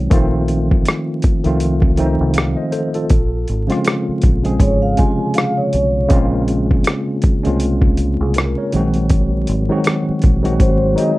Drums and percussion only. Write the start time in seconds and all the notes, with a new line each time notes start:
0.11 kick, closed hi-hat
0.48 closed hi-hat
0.71 kick
0.85 cross-stick, closed hi-hat
1.22 kick, closed hi-hat
1.44 closed hi-hat
1.60 closed hi-hat
1.82 kick
1.97 closed hi-hat
2.34 closed hi-hat
2.38 cross-stick
2.72 closed hi-hat
2.94 closed hi-hat
3.09 kick, closed hi-hat
3.48 closed hi-hat
3.70 cross-stick, closed hi-hat
3.85 cross-stick, closed hi-hat
4.22 kick, closed hi-hat
4.45 closed hi-hat
4.60 kick, closed hi-hat
4.97 kick, closed hi-hat
5.34 closed hi-hat
5.38 cross-stick
5.73 closed hi-hat
6.10 kick, closed hi-hat
6.48 closed hi-hat
6.71 kick
6.84 cross-stick, closed hi-hat
7.22 kick, closed hi-hat
7.45 closed hi-hat
7.60 closed hi-hat
7.82 kick
7.97 closed hi-hat
8.34 closed hi-hat
8.38 cross-stick
8.72 closed hi-hat
8.94 closed hi-hat
9.09 kick, closed hi-hat
9.47 closed hi-hat
9.84 cross-stick, closed hi-hat
10.22 kick, closed hi-hat
10.45 closed hi-hat
10.60 kick, closed hi-hat
10.98 closed hi-hat